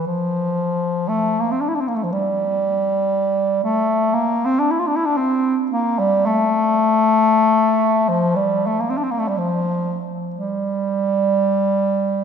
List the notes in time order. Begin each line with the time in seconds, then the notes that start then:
0.07 F3
1.09 A3
1.40 A#3
1.52 C4
1.61 D4
1.69 E4
1.75 D4
1.81 C4
1.88 A#3
1.96 A3
2.04 F3
2.12 G3
3.64 A3
4.14 A#3
4.46 C4
4.60 D4
4.71 E4
4.79 F4
4.87 D4
4.96 E4
5.05 D4
5.17 C4
5.72 A#3
5.99 G3
6.26 A3
8.09 F3
8.36 G3
8.67 A3
8.80 A#3
8.90 C4
8.97 D4
9.04 C4
9.11 A#3
9.19 A3
9.28 G3
9.38 F3
10.36 G3